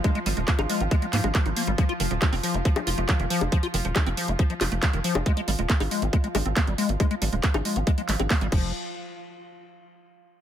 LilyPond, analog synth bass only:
\new Staff \with { instrumentName = "Analog synth bass" } { \clef bass \time 4/4 \tempo 4 = 138 r8 aes,,16 ees,,16 r16 aes,,16 r16 aes,,16 r8 aes,16 aes,,16 r16 aes,,16 r16 aes,,16 | r8 f,,16 ees,,16 r16 f,,16 r16 f,,16 r8 f,,16 f,,16 r16 f,,16 r16 f,,16 | r8 f,,16 ees,,16 r16 f,,16 r16 f,,16 r8 f,,16 f,,16 r16 f,,16 r16 f,,16 | r8 aes,,16 ees,,16 r16 aes,,16 r16 aes,,16 r8 aes,,16 aes,,16 r16 aes,,16 r16 aes,,16 |
r8 aes,,16 ees,,16 r16 aes,,16 r16 aes,,16 r8 aes,,16 aes,,16 r16 aes,,16 f,,8 | r1 | }